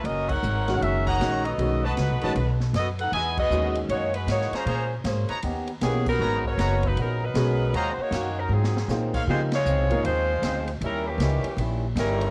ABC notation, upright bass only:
X:1
M:4/4
L:1/8
Q:"Swing" 1/4=156
K:G#m
V:1 name="Upright bass" clef=bass
F,,,2 G,,,2 F,,,2 A,,,2 | B,,,2 (3C,, B,,, =A,,, B,,,2 F,,2 | E,,2 D,,2 F,,2 G,, z | A,,2 G,, z D,,2 B,,,2 |
G,,,2 F,,,2 A,,,2 B,,,2 | D,, z F,,2 G,,2 A,,2 | C,2 (3C,, ^B,,, G,,, D,,2 =D,,2 | D,,2 C,, z A,,,2 =G,,,2 |]